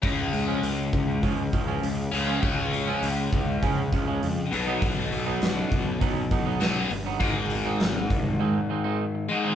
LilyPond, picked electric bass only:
\new Staff \with { instrumentName = "Picked electric bass" } { \clef bass \time 4/4 \key des \major \tempo 4 = 100 des,8 des,8 des,8 des,8 des,8 des,8 des,8 des,8 | des,4 des,8 des,8 des8 des,8 f,8 ces,8 | ces,8 ces,8 ces,8 ces,8 ces,8 ces,8 ces,8 g,,8 | aes,,4 aes,,8 c,8 r2 | }